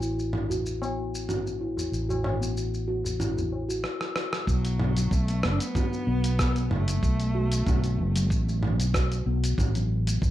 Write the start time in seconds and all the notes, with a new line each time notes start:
Already playing: A1
0.01 E4, shaker
0.19 shaker
0.33 mid tom
0.49 F#4, tabla ge, shaker
0.66 shaker
0.82 B3, tabla na, shaker
1.15 shaker
1.29 F#4, mid tom, shaker
1.47 shaker
1.61 E4, tabla tin
1.77 tabla na, tabla ge, shaker
1.92 A1, shaker
2.09 F#4, tabla na, tabla ge, shaker
2.24 mid tom, tabla na, tabla tin
2.41 B3, shaker
2.57 shaker
2.74 shaker
2.88 F#4
3.04 tabla ge, shaker
3.20 E4, mid tom, shaker
3.37 tabla ge, shaker
3.53 tabla tin
3.69 F#4, shaker
3.84 cross-stick
4.01 cross-stick
4.16 cross-stick
4.33 cross-stick
4.47 B1 F#3 B3, kick, shaker
4.65 closed hi-hat, shaker
4.79 mid tom
4.96 F#3, closed hi-hat, shaker
5.11 B1 A3, kick, shaker
5.28 A3, closed hi-hat, shaker
5.43 F#1 B3, cross-stick
5.51 D4
5.59 B3, closed hi-hat, shaker
5.75 F#4, kick, mid tom, shaker
5.93 shaker
6.07 B1 B3
6.24 closed hi-hat, shaker
6.39 kick, cross-stick, shaker
6.56 F#3, closed hi-hat, shaker
6.71 F#1 A3, mid tom
6.88 A3, closed hi-hat, shaker
7.03 B1, kick, shaker
7.20 closed hi-hat, shaker
7.35 F#4
7.52 closed hi-hat, shaker
7.67 B1 B3, kick, mid tom, shaker
7.84 closed hi-hat, shaker
7.99 F#1
8.16 F#3, closed hi-hat, shaker
8.30 A1, kick, shaker
8.48 A3, shaker
8.63 mid tom
8.79 B1, closed hi-hat, shaker
8.94 F#4, kick, cross-stick, shaker
9.12 closed hi-hat, shaker
9.26 B1 B3
9.44 closed hi-hat, shaker
9.58 A1, kick, mid tom, shaker
9.75 F#3, closed hi-hat, shaker
10.07 A3, closed hi-hat, shaker
10.22 A1, kick, shaker